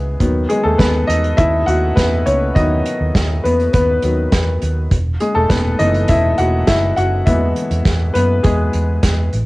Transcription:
Already playing: C#2 E3 G#3 B3 G#4 B4
0.20 D#2 D#3 F#3 B3, kick, closed hi-hat
0.49 G#3 G#4, closed hi-hat
0.64 D#2 A3 A4
0.78 D#2 B3 B4, kick, snare, closed hi-hat
1.07 E2 D#4 D#5, closed hi-hat
1.24 closed hi-hat
1.37 D#2 E4 E5, kick, closed hi-hat
1.66 D#2 F#4 F#5, closed hi-hat
1.96 E2 B3 B4, kick, snare, closed hi-hat
2.26 C#2 C#4 C#5, closed hi-hat
2.55 D#2 D#3 F#3 B3 D#4 D#5, kick, closed hi-hat
2.86 closed hi-hat
3.01 D#2
3.15 D#2, kick, snare, closed hi-hat
3.44 E2 B3 B4, closed hi-hat
3.60 closed hi-hat
3.73 D#2 B3 B4, kick, closed hi-hat
4.02 D#2 D#3 F#3 B3, closed hi-hat
4.32 E2, kick, snare, closed hi-hat
4.62 D#2, closed hi-hat
4.91 E1, kick, closed hi-hat
5.20 G#3 G#4, closed hi-hat
5.35 E1 A3 A4
5.49 E1 B3 B4, kick, snare, closed hi-hat
5.79 F#1 E3 G#3 B3 D#4 D#5, closed hi-hat
5.94 closed hi-hat
6.08 E1 E4 E5, kick, closed hi-hat
6.38 E1 F#4 F#5, closed hi-hat
6.67 F#1 E4 E5, kick, snare, closed hi-hat
6.97 F#1 F#4 F#5, closed hi-hat
7.26 E2 E3 G#3 B3 E4 E5, kick, closed hi-hat
7.56 closed hi-hat
7.71 E2, closed hi-hat
7.85 E2, kick, snare, closed hi-hat
8.14 F#2 B3 B4, closed hi-hat
8.43 E2 G#3 G#4, kick, closed hi-hat
8.73 E2, closed hi-hat
9.03 E2, kick, snare, closed hi-hat
9.33 A1, closed hi-hat

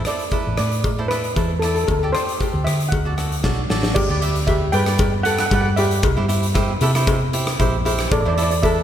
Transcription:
0.05 E4 A4 C5 D5, cross-stick, closed hi-hat
0.19 closed hi-hat
0.31 E4 A4 B4, kick, closed hi-hat, cowbell
0.47 A1
0.57 A2 D5, cross-stick, closed hi-hat
0.72 closed hi-hat
0.84 kick, closed hi-hat, cowbell
0.99 E4 A4 C5
1.08 E4 A4 B4 D5, cross-stick, closed hi-hat
1.24 closed hi-hat
1.36 E2 E4 A4 C5, kick, closed hi-hat, cowbell
1.59 E4 A4, cross-stick, closed hi-hat
1.64 A4 D5
1.75 A4, closed hi-hat
1.84 A4
1.88 D2 A4, kick, closed hi-hat, cowbell
1.99 G4 A4
2.04 A4 D5
2.12 G4 A4 C5 D5, cross-stick, closed hi-hat
2.29 closed hi-hat
2.41 G4 A4 C5, kick, closed hi-hat, cowbell
2.54 D2
2.64 D3 E5, cross-stick, closed hi-hat
2.80 closed hi-hat
2.89 D2 F#5, kick, closed hi-hat
2.93 cowbell
3.05 F#4 A4 D5
3.17 F#4 A4 D5, cross-stick, closed hi-hat
3.32 closed hi-hat
3.43 B1 F#4 A4 D5, kick, snare, cowbell
3.69 A1 F#4 A4 D5, snare
3.83 snare
3.94 G1 G4 D5, kick, crash, cowbell
4.09 D2 G4 B4 D5
4.21 G4 B4 E5, closed hi-hat
4.36 closed hi-hat
4.47 G4 B4 E5, kick, closed hi-hat, cowbell
4.72 G2 G4 B4 D5 G5, closed hi-hat, cowbell
4.86 G4 B4 D5, cross-stick, closed hi-hat
4.98 kick, closed hi-hat, cowbell
5.23 G4 A4 B4 D5 F#5, closed hi-hat
5.31 F#5
5.39 F#5, cross-stick, closed hi-hat
5.46 F#5
5.51 G2 G4 B4 D5 F#5, kick, closed hi-hat, cowbell
5.61 F#5
5.76 G4 B4 D5 E5, closed hi-hat, cowbell
5.91 closed hi-hat
6.03 C2, kick, closed hi-hat, cowbell
6.17 G2 E4 G4 C5
6.28 E4 G4 C5, closed hi-hat
6.43 closed hi-hat
6.54 E4 G4 C5, kick, cross-stick, closed hi-hat, cowbell
6.81 C3 E4 G4 A4, closed hi-hat, cowbell
6.95 E4 G4 C5, cross-stick, closed hi-hat
7.07 kick, closed hi-hat, cowbell
7.33 E4 G4 C5, closed hi-hat
7.47 cross-stick, closed hi-hat
7.59 A#1 E4 G4 C5, kick, closed hi-hat, cowbell
7.85 E4 G4 C5, closed hi-hat, cowbell
7.99 cross-stick, closed hi-hat
8.11 A1 A4 D5, kick, closed hi-hat, cowbell
8.21 D5
8.25 E2 E4 A4 C5 D5
8.35 E4 A4 C5 D5, closed hi-hat
8.43 D5
8.51 D5, closed hi-hat
8.63 E4 A4 B4 E5, kick, closed hi-hat, cowbell

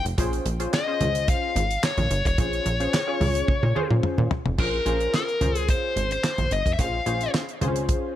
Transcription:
0.05 F1, closed hi-hat
0.18 A#1 C#4 F4 G#4 C5, kick, closed hi-hat, low conga
0.33 closed hi-hat
0.45 A#1, closed hi-hat
0.60 C#4 F4 G#4 C5, closed hi-hat
0.74 D#5, snare, clap
0.87 C#4 F4 G#4 C5
1.01 C#2, closed hi-hat, muted conga, high conga, low conga
1.15 closed hi-hat
1.28 F5, kick, closed hi-hat, muted conga
1.56 G#1, closed hi-hat, muted conga, high conga
1.71 closed hi-hat
1.83 C#5, snare, clap, muted conga
1.97 A#1, closed hi-hat, high conga, low conga
2.11 G1, closed hi-hat, muted conga
2.25 F1 C#5, kick, closed hi-hat
2.38 A#1 C#4 F4 G#4 C5, kick, closed hi-hat, muted conga, low conga
2.53 closed hi-hat
2.66 A#1, closed hi-hat
2.80 C#4 F4 G#4 C5, closed hi-hat
2.94 snare, clap, muted conga
3.07 C#4 F4 G#4 C#5
3.21 C#2, open hi-hat, muted conga, high conga, low conga
3.35 closed hi-hat
3.48 kick, high tom, muted conga
3.63 A#2, high tom
3.75 C#4 F4 G#4 C5, muted conga, high conga
3.90 A#2, mid tom
4.03 mid tom, muted conga
4.18 A#2, high conga, low conga
4.31 floor tom, muted conga
4.46 F1, floor tom
4.58 A#1 C#4 F4 G#4 A#4 C5, kick, crash, low conga
4.85 A#1 C#4 F4 G#4 C5, closed hi-hat, muted conga
5.00 closed hi-hat
5.14 A#4, snare, clap
5.28 closed hi-hat
5.41 C#2 C#4 F4 G#4 C5, closed hi-hat, muted conga, high conga, low conga
5.55 G#4, closed hi-hat
5.68 C5, kick, closed hi-hat, muted conga
5.96 G#1, closed hi-hat, muted conga, high conga
6.11 C5, closed hi-hat
6.24 snare, clap, muted conga
6.38 A#1, closed hi-hat, high conga, low conga
6.51 G1 D#5, closed hi-hat, muted conga
6.66 F1, kick, closed hi-hat
6.73 E5
6.78 A#1 C#4 F4 G#4 C5 F5, kick, closed hi-hat, low conga
7.06 A#1 C#4 F4 G#4 C5, closed hi-hat, muted conga
7.21 closed hi-hat
7.34 snare, clap
7.49 closed hi-hat
7.61 C#2 C4 F4 G#4 C5, closed hi-hat, muted conga, high conga, low conga
7.67 C#4
7.76 closed hi-hat
7.89 kick, closed hi-hat, muted conga

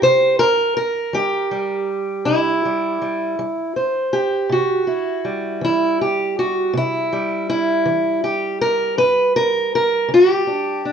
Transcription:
Already playing: C4 G4
0.02 C3 C5
0.39 A#4
0.77 A#4
1.13 G3 G4
1.51 G3
2.25 C3 E4
2.65 G3
3.02 G3
3.39 G3
3.76 C5
4.13 G4
4.49 C3 F#4
4.87 E4
5.25 G3
5.61 E3 E4
6.01 G4
6.39 F#4
6.74 C3 E4
7.13 G3
7.50 E4
7.86 E3
8.24 G4
8.61 A#4
8.98 G2 B4
9.36 A#4
9.75 A#4
10.08 D3
10.14 F#4
10.31 G4
10.47 D4
10.85 D4

